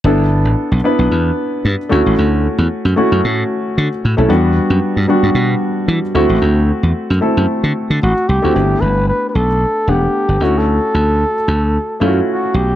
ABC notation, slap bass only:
X:1
M:4/4
L:1/16
Q:"Swing 16ths" 1/4=113
K:D
V:1 name="Slap bass" clef=bass
G,,,3 A,,, z B,,, z B,,, E,,2 z2 G,, z D,, A,,, | D,,3 E,, z F,, z F,, A,,2 z2 D, z A,, B,,, | E,,3 F,, z G,, z G,, B,,2 z2 E, z D,, A,,, | D,,3 E,, z F,, z F,, z D, z D, A,,, z =C,, D,, |
G,,,2 G,,,3 z B,,,3 z E,,,2 z G,,, D,,2- | D,,2 D,,3 z D,,3 z F,,2 z2 B,,,2 |]